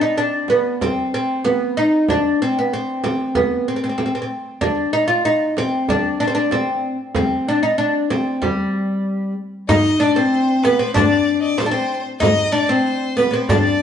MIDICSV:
0, 0, Header, 1, 6, 480
1, 0, Start_track
1, 0, Tempo, 634921
1, 1563, Time_signature, 4, 2, 24, 8
1, 10449, End_track
2, 0, Start_track
2, 0, Title_t, "Violin"
2, 0, Program_c, 0, 40
2, 7324, Note_on_c, 0, 75, 84
2, 7571, Note_on_c, 0, 74, 81
2, 7583, Note_off_c, 0, 75, 0
2, 7679, Note_off_c, 0, 74, 0
2, 7683, Note_on_c, 0, 72, 74
2, 8038, Note_on_c, 0, 71, 73
2, 8050, Note_off_c, 0, 72, 0
2, 8272, Note_off_c, 0, 71, 0
2, 8277, Note_on_c, 0, 74, 80
2, 8589, Note_off_c, 0, 74, 0
2, 8618, Note_on_c, 0, 75, 56
2, 8633, Note_on_c, 0, 74, 77
2, 8644, Note_off_c, 0, 75, 0
2, 8752, Note_on_c, 0, 72, 74
2, 8763, Note_off_c, 0, 74, 0
2, 8853, Note_off_c, 0, 72, 0
2, 8857, Note_on_c, 0, 72, 74
2, 9102, Note_off_c, 0, 72, 0
2, 9229, Note_on_c, 0, 75, 87
2, 9462, Note_on_c, 0, 74, 78
2, 9473, Note_off_c, 0, 75, 0
2, 9595, Note_on_c, 0, 72, 81
2, 9606, Note_off_c, 0, 74, 0
2, 9961, Note_on_c, 0, 71, 70
2, 9972, Note_off_c, 0, 72, 0
2, 10086, Note_on_c, 0, 72, 69
2, 10098, Note_off_c, 0, 71, 0
2, 10191, Note_off_c, 0, 72, 0
2, 10196, Note_on_c, 0, 74, 77
2, 10263, Note_on_c, 0, 72, 69
2, 10274, Note_off_c, 0, 74, 0
2, 10301, Note_on_c, 0, 74, 87
2, 10313, Note_off_c, 0, 72, 0
2, 10449, Note_off_c, 0, 74, 0
2, 10449, End_track
3, 0, Start_track
3, 0, Title_t, "Oud"
3, 0, Program_c, 1, 24
3, 10, Note_on_c, 1, 63, 83
3, 130, Note_off_c, 1, 63, 0
3, 133, Note_on_c, 1, 62, 84
3, 351, Note_off_c, 1, 62, 0
3, 376, Note_on_c, 1, 59, 76
3, 617, Note_off_c, 1, 59, 0
3, 619, Note_on_c, 1, 60, 78
3, 854, Note_off_c, 1, 60, 0
3, 863, Note_on_c, 1, 60, 76
3, 1094, Note_on_c, 1, 59, 73
3, 1100, Note_off_c, 1, 60, 0
3, 1336, Note_off_c, 1, 59, 0
3, 1340, Note_on_c, 1, 63, 81
3, 1579, Note_off_c, 1, 63, 0
3, 1587, Note_on_c, 1, 62, 84
3, 1822, Note_off_c, 1, 62, 0
3, 1829, Note_on_c, 1, 60, 77
3, 1939, Note_off_c, 1, 60, 0
3, 1955, Note_on_c, 1, 59, 64
3, 2062, Note_off_c, 1, 59, 0
3, 2067, Note_on_c, 1, 60, 73
3, 2289, Note_off_c, 1, 60, 0
3, 2298, Note_on_c, 1, 60, 72
3, 2535, Note_on_c, 1, 59, 72
3, 2538, Note_off_c, 1, 60, 0
3, 2777, Note_off_c, 1, 59, 0
3, 2783, Note_on_c, 1, 60, 63
3, 2827, Note_off_c, 1, 60, 0
3, 2844, Note_on_c, 1, 60, 50
3, 2886, Note_off_c, 1, 60, 0
3, 2901, Note_on_c, 1, 60, 55
3, 2934, Note_off_c, 1, 60, 0
3, 2943, Note_on_c, 1, 60, 49
3, 2991, Note_off_c, 1, 60, 0
3, 3007, Note_on_c, 1, 60, 58
3, 3052, Note_off_c, 1, 60, 0
3, 3067, Note_on_c, 1, 60, 47
3, 3110, Note_off_c, 1, 60, 0
3, 3137, Note_on_c, 1, 60, 56
3, 3173, Note_off_c, 1, 60, 0
3, 3188, Note_on_c, 1, 60, 50
3, 3227, Note_off_c, 1, 60, 0
3, 3486, Note_on_c, 1, 62, 91
3, 3724, Note_off_c, 1, 62, 0
3, 3727, Note_on_c, 1, 63, 85
3, 3834, Note_off_c, 1, 63, 0
3, 3837, Note_on_c, 1, 65, 84
3, 3965, Note_off_c, 1, 65, 0
3, 3970, Note_on_c, 1, 63, 88
3, 4191, Note_off_c, 1, 63, 0
3, 4218, Note_on_c, 1, 60, 83
3, 4456, Note_off_c, 1, 60, 0
3, 4459, Note_on_c, 1, 62, 83
3, 4680, Note_off_c, 1, 62, 0
3, 4689, Note_on_c, 1, 62, 85
3, 4740, Note_off_c, 1, 62, 0
3, 4744, Note_on_c, 1, 60, 67
3, 4794, Note_off_c, 1, 60, 0
3, 4798, Note_on_c, 1, 62, 81
3, 4927, Note_off_c, 1, 62, 0
3, 4930, Note_on_c, 1, 60, 78
3, 5263, Note_off_c, 1, 60, 0
3, 5411, Note_on_c, 1, 60, 80
3, 5655, Note_off_c, 1, 60, 0
3, 5658, Note_on_c, 1, 62, 78
3, 5763, Note_off_c, 1, 62, 0
3, 5766, Note_on_c, 1, 63, 75
3, 5879, Note_off_c, 1, 63, 0
3, 5882, Note_on_c, 1, 62, 78
3, 6124, Note_off_c, 1, 62, 0
3, 6127, Note_on_c, 1, 60, 74
3, 6363, Note_on_c, 1, 55, 62
3, 6375, Note_off_c, 1, 60, 0
3, 7056, Note_off_c, 1, 55, 0
3, 7325, Note_on_c, 1, 63, 99
3, 7556, Note_off_c, 1, 63, 0
3, 7559, Note_on_c, 1, 62, 86
3, 7682, Note_on_c, 1, 60, 85
3, 7687, Note_off_c, 1, 62, 0
3, 8046, Note_off_c, 1, 60, 0
3, 8049, Note_on_c, 1, 59, 79
3, 8159, Note_on_c, 1, 60, 76
3, 8172, Note_off_c, 1, 59, 0
3, 8270, Note_off_c, 1, 60, 0
3, 8273, Note_on_c, 1, 62, 96
3, 8753, Note_off_c, 1, 62, 0
3, 8756, Note_on_c, 1, 60, 84
3, 8811, Note_off_c, 1, 60, 0
3, 8816, Note_on_c, 1, 62, 70
3, 8853, Note_off_c, 1, 62, 0
3, 8856, Note_on_c, 1, 60, 80
3, 9101, Note_off_c, 1, 60, 0
3, 9225, Note_on_c, 1, 63, 97
3, 9464, Note_off_c, 1, 63, 0
3, 9467, Note_on_c, 1, 62, 89
3, 9594, Note_on_c, 1, 60, 84
3, 9602, Note_off_c, 1, 62, 0
3, 9951, Note_off_c, 1, 60, 0
3, 9954, Note_on_c, 1, 59, 75
3, 10052, Note_off_c, 1, 59, 0
3, 10061, Note_on_c, 1, 59, 59
3, 10081, Note_on_c, 1, 60, 75
3, 10089, Note_off_c, 1, 59, 0
3, 10200, Note_off_c, 1, 60, 0
3, 10203, Note_on_c, 1, 62, 88
3, 10449, Note_off_c, 1, 62, 0
3, 10449, End_track
4, 0, Start_track
4, 0, Title_t, "Darbuka"
4, 7325, Note_on_c, 9, 64, 94
4, 7400, Note_off_c, 9, 64, 0
4, 7444, Note_on_c, 9, 62, 25
4, 7520, Note_off_c, 9, 62, 0
4, 8041, Note_on_c, 9, 63, 64
4, 8116, Note_off_c, 9, 63, 0
4, 8283, Note_on_c, 9, 64, 87
4, 8359, Note_off_c, 9, 64, 0
4, 8523, Note_on_c, 9, 62, 27
4, 8599, Note_off_c, 9, 62, 0
4, 8645, Note_on_c, 9, 62, 26
4, 8720, Note_off_c, 9, 62, 0
4, 8755, Note_on_c, 9, 63, 66
4, 8831, Note_off_c, 9, 63, 0
4, 8884, Note_on_c, 9, 62, 28
4, 8960, Note_off_c, 9, 62, 0
4, 9238, Note_on_c, 9, 64, 75
4, 9314, Note_off_c, 9, 64, 0
4, 9360, Note_on_c, 9, 62, 27
4, 9436, Note_off_c, 9, 62, 0
4, 10199, Note_on_c, 9, 64, 87
4, 10274, Note_off_c, 9, 64, 0
4, 10449, End_track
5, 0, Start_track
5, 0, Title_t, "Frame drum"
5, 363, Note_on_c, 9, 64, 59
5, 439, Note_off_c, 9, 64, 0
5, 614, Note_on_c, 9, 64, 70
5, 690, Note_off_c, 9, 64, 0
5, 1092, Note_on_c, 9, 64, 65
5, 1168, Note_off_c, 9, 64, 0
5, 1576, Note_on_c, 9, 64, 73
5, 1652, Note_off_c, 9, 64, 0
5, 2296, Note_on_c, 9, 64, 65
5, 2371, Note_off_c, 9, 64, 0
5, 2533, Note_on_c, 9, 64, 70
5, 2609, Note_off_c, 9, 64, 0
5, 3009, Note_on_c, 9, 64, 62
5, 3085, Note_off_c, 9, 64, 0
5, 3487, Note_on_c, 9, 64, 76
5, 3563, Note_off_c, 9, 64, 0
5, 4209, Note_on_c, 9, 64, 62
5, 4285, Note_off_c, 9, 64, 0
5, 4450, Note_on_c, 9, 64, 79
5, 4525, Note_off_c, 9, 64, 0
5, 4924, Note_on_c, 9, 64, 67
5, 4999, Note_off_c, 9, 64, 0
5, 5403, Note_on_c, 9, 64, 85
5, 5478, Note_off_c, 9, 64, 0
5, 6130, Note_on_c, 9, 64, 62
5, 6205, Note_off_c, 9, 64, 0
5, 6368, Note_on_c, 9, 64, 78
5, 6444, Note_off_c, 9, 64, 0
5, 7332, Note_on_c, 9, 64, 82
5, 7408, Note_off_c, 9, 64, 0
5, 8051, Note_on_c, 9, 64, 60
5, 8126, Note_off_c, 9, 64, 0
5, 8296, Note_on_c, 9, 64, 85
5, 8371, Note_off_c, 9, 64, 0
5, 8777, Note_on_c, 9, 64, 65
5, 8853, Note_off_c, 9, 64, 0
5, 9247, Note_on_c, 9, 64, 92
5, 9322, Note_off_c, 9, 64, 0
5, 9968, Note_on_c, 9, 64, 61
5, 10043, Note_off_c, 9, 64, 0
5, 10209, Note_on_c, 9, 64, 84
5, 10284, Note_off_c, 9, 64, 0
5, 10449, End_track
6, 0, Start_track
6, 0, Title_t, "Riq"
6, 7332, Note_on_c, 9, 54, 62
6, 7407, Note_off_c, 9, 54, 0
6, 7452, Note_on_c, 9, 54, 17
6, 7528, Note_off_c, 9, 54, 0
6, 7578, Note_on_c, 9, 54, 18
6, 7653, Note_off_c, 9, 54, 0
6, 7696, Note_on_c, 9, 54, 17
6, 7772, Note_off_c, 9, 54, 0
6, 7816, Note_on_c, 9, 54, 17
6, 7892, Note_off_c, 9, 54, 0
6, 8048, Note_on_c, 9, 54, 51
6, 8124, Note_off_c, 9, 54, 0
6, 8289, Note_on_c, 9, 54, 62
6, 8365, Note_off_c, 9, 54, 0
6, 8413, Note_on_c, 9, 54, 16
6, 8489, Note_off_c, 9, 54, 0
6, 8526, Note_on_c, 9, 54, 18
6, 8602, Note_off_c, 9, 54, 0
6, 8771, Note_on_c, 9, 54, 46
6, 8847, Note_off_c, 9, 54, 0
6, 9019, Note_on_c, 9, 54, 17
6, 9094, Note_off_c, 9, 54, 0
6, 9254, Note_on_c, 9, 54, 57
6, 9330, Note_off_c, 9, 54, 0
6, 9373, Note_on_c, 9, 54, 17
6, 9449, Note_off_c, 9, 54, 0
6, 9491, Note_on_c, 9, 54, 18
6, 9567, Note_off_c, 9, 54, 0
6, 9607, Note_on_c, 9, 54, 17
6, 9682, Note_off_c, 9, 54, 0
6, 9728, Note_on_c, 9, 54, 16
6, 9804, Note_off_c, 9, 54, 0
6, 9965, Note_on_c, 9, 54, 45
6, 10041, Note_off_c, 9, 54, 0
6, 10206, Note_on_c, 9, 54, 53
6, 10282, Note_off_c, 9, 54, 0
6, 10331, Note_on_c, 9, 54, 19
6, 10406, Note_off_c, 9, 54, 0
6, 10449, End_track
0, 0, End_of_file